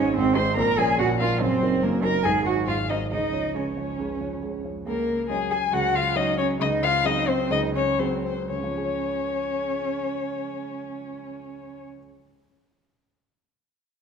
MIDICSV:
0, 0, Header, 1, 4, 480
1, 0, Start_track
1, 0, Key_signature, -5, "major"
1, 0, Tempo, 418994
1, 1616, Time_signature, 4, 2, 24, 8
1, 3062, Tempo, 437637
1, 7862, Tempo, 470958
1, 8822, Tempo, 497925
1, 14626, End_track
2, 0, Start_track
2, 0, Title_t, "Violin"
2, 0, Program_c, 0, 40
2, 0, Note_on_c, 0, 73, 105
2, 164, Note_on_c, 0, 72, 117
2, 181, Note_off_c, 0, 73, 0
2, 402, Note_on_c, 0, 84, 113
2, 419, Note_off_c, 0, 72, 0
2, 631, Note_off_c, 0, 84, 0
2, 638, Note_on_c, 0, 82, 127
2, 890, Note_on_c, 0, 80, 116
2, 907, Note_off_c, 0, 82, 0
2, 1130, Note_on_c, 0, 78, 108
2, 1148, Note_off_c, 0, 80, 0
2, 1361, Note_off_c, 0, 78, 0
2, 1368, Note_on_c, 0, 77, 120
2, 1607, Note_off_c, 0, 77, 0
2, 1613, Note_on_c, 0, 72, 118
2, 2088, Note_on_c, 0, 70, 102
2, 2105, Note_off_c, 0, 72, 0
2, 2328, Note_off_c, 0, 70, 0
2, 2335, Note_on_c, 0, 82, 105
2, 2549, Note_off_c, 0, 82, 0
2, 2556, Note_on_c, 0, 80, 114
2, 2648, Note_off_c, 0, 80, 0
2, 2816, Note_on_c, 0, 78, 93
2, 2907, Note_off_c, 0, 78, 0
2, 3058, Note_on_c, 0, 77, 103
2, 3301, Note_on_c, 0, 75, 93
2, 3318, Note_off_c, 0, 77, 0
2, 3533, Note_off_c, 0, 75, 0
2, 3540, Note_on_c, 0, 75, 98
2, 4015, Note_on_c, 0, 73, 75
2, 4031, Note_off_c, 0, 75, 0
2, 5223, Note_off_c, 0, 73, 0
2, 5471, Note_on_c, 0, 70, 104
2, 5908, Note_off_c, 0, 70, 0
2, 5936, Note_on_c, 0, 68, 107
2, 6176, Note_on_c, 0, 80, 110
2, 6192, Note_off_c, 0, 68, 0
2, 6415, Note_on_c, 0, 78, 124
2, 6432, Note_off_c, 0, 80, 0
2, 6660, Note_on_c, 0, 77, 123
2, 6677, Note_off_c, 0, 78, 0
2, 6888, Note_on_c, 0, 75, 116
2, 6905, Note_off_c, 0, 77, 0
2, 7117, Note_off_c, 0, 75, 0
2, 7124, Note_on_c, 0, 73, 127
2, 7212, Note_off_c, 0, 73, 0
2, 7381, Note_on_c, 0, 75, 115
2, 7468, Note_off_c, 0, 75, 0
2, 7620, Note_on_c, 0, 77, 127
2, 7868, Note_on_c, 0, 75, 123
2, 7883, Note_off_c, 0, 77, 0
2, 8104, Note_on_c, 0, 72, 127
2, 8119, Note_off_c, 0, 75, 0
2, 8332, Note_off_c, 0, 72, 0
2, 8338, Note_on_c, 0, 75, 116
2, 8420, Note_off_c, 0, 75, 0
2, 8585, Note_on_c, 0, 73, 113
2, 8822, Note_on_c, 0, 72, 100
2, 8837, Note_off_c, 0, 73, 0
2, 9063, Note_off_c, 0, 72, 0
2, 9068, Note_on_c, 0, 72, 95
2, 9303, Note_off_c, 0, 72, 0
2, 9315, Note_on_c, 0, 73, 97
2, 12519, Note_off_c, 0, 73, 0
2, 14626, End_track
3, 0, Start_track
3, 0, Title_t, "Cello"
3, 0, Program_c, 1, 42
3, 0, Note_on_c, 1, 61, 126
3, 174, Note_off_c, 1, 61, 0
3, 186, Note_on_c, 1, 60, 127
3, 421, Note_on_c, 1, 72, 127
3, 439, Note_off_c, 1, 60, 0
3, 658, Note_off_c, 1, 72, 0
3, 664, Note_on_c, 1, 70, 127
3, 898, Note_on_c, 1, 68, 127
3, 915, Note_off_c, 1, 70, 0
3, 1134, Note_off_c, 1, 68, 0
3, 1141, Note_on_c, 1, 66, 127
3, 1233, Note_off_c, 1, 66, 0
3, 1379, Note_on_c, 1, 65, 120
3, 1623, Note_on_c, 1, 60, 127
3, 1640, Note_off_c, 1, 65, 0
3, 2105, Note_on_c, 1, 58, 119
3, 2123, Note_off_c, 1, 60, 0
3, 2339, Note_on_c, 1, 70, 127
3, 2356, Note_off_c, 1, 58, 0
3, 2579, Note_on_c, 1, 68, 122
3, 2596, Note_off_c, 1, 70, 0
3, 2812, Note_off_c, 1, 68, 0
3, 2819, Note_on_c, 1, 66, 106
3, 3057, Note_off_c, 1, 66, 0
3, 3065, Note_on_c, 1, 65, 110
3, 3153, Note_off_c, 1, 65, 0
3, 3308, Note_on_c, 1, 63, 105
3, 3396, Note_off_c, 1, 63, 0
3, 3545, Note_on_c, 1, 63, 110
3, 4027, Note_on_c, 1, 61, 89
3, 4043, Note_off_c, 1, 63, 0
3, 5229, Note_off_c, 1, 61, 0
3, 5462, Note_on_c, 1, 58, 103
3, 5903, Note_off_c, 1, 58, 0
3, 5934, Note_on_c, 1, 56, 94
3, 6022, Note_off_c, 1, 56, 0
3, 6171, Note_on_c, 1, 68, 105
3, 6258, Note_off_c, 1, 68, 0
3, 6408, Note_on_c, 1, 66, 104
3, 6655, Note_on_c, 1, 65, 108
3, 6672, Note_off_c, 1, 66, 0
3, 6894, Note_on_c, 1, 63, 122
3, 6910, Note_off_c, 1, 65, 0
3, 7130, Note_off_c, 1, 63, 0
3, 7139, Note_on_c, 1, 61, 103
3, 7370, Note_off_c, 1, 61, 0
3, 7382, Note_on_c, 1, 63, 127
3, 7630, Note_on_c, 1, 65, 117
3, 7646, Note_off_c, 1, 63, 0
3, 7871, Note_on_c, 1, 63, 122
3, 7886, Note_off_c, 1, 65, 0
3, 8095, Note_on_c, 1, 60, 113
3, 8111, Note_off_c, 1, 63, 0
3, 8336, Note_on_c, 1, 63, 127
3, 8351, Note_off_c, 1, 60, 0
3, 8569, Note_off_c, 1, 63, 0
3, 8576, Note_on_c, 1, 61, 97
3, 8818, Note_on_c, 1, 60, 93
3, 8833, Note_off_c, 1, 61, 0
3, 9061, Note_off_c, 1, 60, 0
3, 9065, Note_on_c, 1, 60, 78
3, 9142, Note_off_c, 1, 60, 0
3, 9304, Note_on_c, 1, 61, 101
3, 12509, Note_off_c, 1, 61, 0
3, 14626, End_track
4, 0, Start_track
4, 0, Title_t, "Grand piano"
4, 0, Program_c, 2, 0
4, 0, Control_c, 2, 64, 127
4, 0, Note_on_c, 2, 32, 77
4, 0, Note_on_c, 2, 44, 99
4, 0, Note_on_c, 2, 56, 79
4, 0, Note_on_c, 2, 63, 67
4, 0, Note_on_c, 2, 72, 73
4, 157, Note_off_c, 2, 56, 0
4, 159, Note_off_c, 2, 63, 0
4, 160, Note_off_c, 2, 72, 0
4, 187, Note_off_c, 2, 32, 0
4, 187, Note_off_c, 2, 44, 0
4, 187, Note_on_c, 2, 32, 86
4, 187, Note_on_c, 2, 44, 94
4, 413, Note_off_c, 2, 44, 0
4, 414, Note_off_c, 2, 32, 0
4, 423, Note_on_c, 2, 56, 79
4, 427, Note_on_c, 2, 63, 78
4, 434, Note_on_c, 2, 72, 76
4, 635, Note_off_c, 2, 56, 0
4, 637, Note_off_c, 2, 63, 0
4, 641, Note_off_c, 2, 72, 0
4, 655, Note_on_c, 2, 34, 81
4, 656, Note_on_c, 2, 46, 93
4, 677, Control_c, 2, 64, 0
4, 832, Control_c, 2, 64, 127
4, 888, Note_off_c, 2, 34, 0
4, 889, Note_off_c, 2, 46, 0
4, 897, Note_on_c, 2, 53, 80
4, 905, Note_on_c, 2, 61, 81
4, 909, Note_on_c, 2, 70, 81
4, 1113, Note_off_c, 2, 53, 0
4, 1118, Note_off_c, 2, 61, 0
4, 1120, Note_off_c, 2, 70, 0
4, 1134, Note_on_c, 2, 34, 99
4, 1137, Note_on_c, 2, 46, 86
4, 1369, Note_off_c, 2, 34, 0
4, 1370, Note_off_c, 2, 46, 0
4, 1376, Note_on_c, 2, 53, 70
4, 1382, Note_on_c, 2, 61, 72
4, 1386, Note_on_c, 2, 70, 76
4, 1592, Note_off_c, 2, 53, 0
4, 1596, Note_off_c, 2, 61, 0
4, 1598, Note_off_c, 2, 70, 0
4, 1612, Note_on_c, 2, 30, 79
4, 1613, Note_on_c, 2, 42, 89
4, 1640, Control_c, 2, 64, 0
4, 1842, Control_c, 2, 64, 127
4, 1847, Note_off_c, 2, 30, 0
4, 1847, Note_off_c, 2, 42, 0
4, 1856, Note_on_c, 2, 54, 66
4, 1860, Note_on_c, 2, 63, 68
4, 1863, Note_on_c, 2, 70, 75
4, 2071, Note_off_c, 2, 54, 0
4, 2073, Note_off_c, 2, 63, 0
4, 2075, Note_off_c, 2, 70, 0
4, 2098, Note_on_c, 2, 30, 72
4, 2099, Note_on_c, 2, 42, 80
4, 2329, Note_off_c, 2, 30, 0
4, 2330, Note_off_c, 2, 42, 0
4, 2337, Note_on_c, 2, 54, 70
4, 2344, Note_on_c, 2, 63, 66
4, 2346, Note_on_c, 2, 70, 75
4, 2553, Note_off_c, 2, 54, 0
4, 2557, Note_off_c, 2, 63, 0
4, 2558, Note_off_c, 2, 70, 0
4, 2581, Note_on_c, 2, 32, 79
4, 2581, Note_on_c, 2, 44, 85
4, 2598, Control_c, 2, 64, 0
4, 2798, Control_c, 2, 64, 127
4, 2813, Note_off_c, 2, 32, 0
4, 2813, Note_off_c, 2, 44, 0
4, 2820, Note_on_c, 2, 54, 63
4, 2825, Note_on_c, 2, 63, 70
4, 2828, Note_on_c, 2, 72, 62
4, 3038, Note_off_c, 2, 54, 0
4, 3041, Note_off_c, 2, 63, 0
4, 3043, Note_off_c, 2, 72, 0
4, 3066, Note_on_c, 2, 32, 81
4, 3068, Note_on_c, 2, 44, 75
4, 3293, Note_off_c, 2, 32, 0
4, 3294, Note_off_c, 2, 44, 0
4, 3300, Note_on_c, 2, 54, 50
4, 3307, Note_on_c, 2, 63, 55
4, 3314, Note_on_c, 2, 72, 66
4, 3515, Note_off_c, 2, 54, 0
4, 3519, Note_off_c, 2, 63, 0
4, 3523, Note_off_c, 2, 72, 0
4, 3537, Note_on_c, 2, 37, 67
4, 3539, Note_on_c, 2, 49, 67
4, 3560, Control_c, 2, 64, 0
4, 3731, Control_c, 2, 64, 127
4, 3772, Note_off_c, 2, 37, 0
4, 3773, Note_off_c, 2, 49, 0
4, 3777, Note_on_c, 2, 53, 48
4, 3782, Note_on_c, 2, 61, 50
4, 3786, Note_on_c, 2, 73, 63
4, 3995, Note_off_c, 2, 53, 0
4, 3998, Note_off_c, 2, 61, 0
4, 4000, Note_off_c, 2, 73, 0
4, 4016, Note_on_c, 2, 49, 57
4, 4018, Note_on_c, 2, 37, 61
4, 4252, Note_off_c, 2, 49, 0
4, 4253, Note_off_c, 2, 37, 0
4, 4267, Note_on_c, 2, 53, 54
4, 4273, Note_on_c, 2, 61, 47
4, 4274, Note_on_c, 2, 73, 57
4, 4482, Note_off_c, 2, 53, 0
4, 4485, Note_off_c, 2, 61, 0
4, 4486, Note_off_c, 2, 73, 0
4, 4505, Note_on_c, 2, 37, 68
4, 4506, Note_on_c, 2, 49, 65
4, 4738, Note_off_c, 2, 37, 0
4, 4738, Note_off_c, 2, 49, 0
4, 4746, Note_on_c, 2, 53, 51
4, 4751, Note_on_c, 2, 61, 50
4, 4758, Note_on_c, 2, 73, 57
4, 4962, Note_off_c, 2, 53, 0
4, 4964, Note_off_c, 2, 61, 0
4, 4968, Note_off_c, 2, 73, 0
4, 4982, Note_on_c, 2, 37, 65
4, 4983, Note_on_c, 2, 49, 67
4, 5218, Note_off_c, 2, 37, 0
4, 5218, Note_off_c, 2, 49, 0
4, 5229, Note_on_c, 2, 53, 45
4, 5235, Note_on_c, 2, 61, 46
4, 5236, Note_on_c, 2, 73, 44
4, 5443, Note_off_c, 2, 53, 0
4, 5446, Note_off_c, 2, 61, 0
4, 5447, Note_off_c, 2, 73, 0
4, 5466, Note_on_c, 2, 37, 78
4, 5467, Note_on_c, 2, 49, 69
4, 5485, Control_c, 2, 64, 0
4, 5644, Control_c, 2, 64, 127
4, 5942, Note_on_c, 2, 54, 68
4, 5948, Note_on_c, 2, 61, 64
4, 5950, Note_on_c, 2, 73, 65
4, 6369, Note_off_c, 2, 54, 0
4, 6372, Note_off_c, 2, 61, 0
4, 6373, Note_off_c, 2, 73, 0
4, 6383, Note_off_c, 2, 37, 0
4, 6383, Note_off_c, 2, 49, 0
4, 6409, Note_on_c, 2, 37, 80
4, 6412, Note_on_c, 2, 49, 79
4, 6883, Note_on_c, 2, 54, 84
4, 6886, Note_on_c, 2, 61, 75
4, 6888, Note_on_c, 2, 73, 84
4, 7322, Note_off_c, 2, 54, 0
4, 7324, Note_off_c, 2, 61, 0
4, 7325, Note_off_c, 2, 73, 0
4, 7338, Note_off_c, 2, 37, 0
4, 7340, Note_off_c, 2, 49, 0
4, 7365, Note_on_c, 2, 37, 95
4, 7369, Note_on_c, 2, 49, 83
4, 7392, Control_c, 2, 64, 0
4, 7593, Control_c, 2, 64, 127
4, 7856, Note_on_c, 2, 54, 76
4, 7865, Note_on_c, 2, 60, 64
4, 7866, Note_on_c, 2, 68, 83
4, 8286, Note_off_c, 2, 54, 0
4, 8290, Note_off_c, 2, 60, 0
4, 8291, Note_off_c, 2, 68, 0
4, 8299, Note_off_c, 2, 37, 0
4, 8301, Note_off_c, 2, 49, 0
4, 8324, Note_on_c, 2, 37, 87
4, 8327, Note_on_c, 2, 49, 75
4, 8823, Note_on_c, 2, 54, 74
4, 8828, Note_on_c, 2, 60, 70
4, 8833, Note_on_c, 2, 68, 76
4, 9267, Note_off_c, 2, 54, 0
4, 9270, Note_off_c, 2, 60, 0
4, 9272, Note_off_c, 2, 68, 0
4, 9274, Note_off_c, 2, 37, 0
4, 9275, Note_off_c, 2, 49, 0
4, 9306, Note_on_c, 2, 37, 59
4, 9325, Control_c, 2, 64, 0
4, 9374, Note_on_c, 2, 49, 64
4, 9444, Note_on_c, 2, 53, 63
4, 9510, Note_on_c, 2, 61, 63
4, 9511, Control_c, 2, 64, 127
4, 9578, Note_on_c, 2, 68, 67
4, 9645, Note_on_c, 2, 73, 63
4, 12510, Note_off_c, 2, 37, 0
4, 12579, Note_off_c, 2, 49, 0
4, 12648, Note_off_c, 2, 53, 0
4, 12676, Control_c, 2, 64, 0
4, 12714, Note_off_c, 2, 61, 0
4, 12782, Note_off_c, 2, 68, 0
4, 12849, Note_off_c, 2, 73, 0
4, 14626, End_track
0, 0, End_of_file